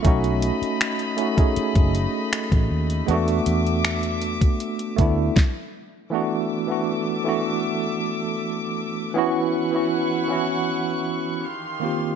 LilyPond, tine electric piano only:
\new Staff \with { instrumentName = "Tine electric piano" } { \time 4/4 \key e \mixolydian \tempo 4 = 79 <a cis' dis' fis'>4~ <a cis' dis' fis'>16 r16 <a cis' dis' fis'>16 <a cis' dis' gis'>4.~ <a cis' dis' gis'>16 r8 | <gis a b d' fis'>4.~ <gis a b d' fis'>16 r8. <a b d' e'>8 r4 | <e a b d' fis'>8. <e a b d' fis'>8. <e a b d' fis'>4.~ <e a b d' fis'>16 r8. | <e b cis' e' fis'>8. <e b cis' e' fis'>8. <e b cis' e' fis'>4. r8 <dis ais bis eis' g'>8 | }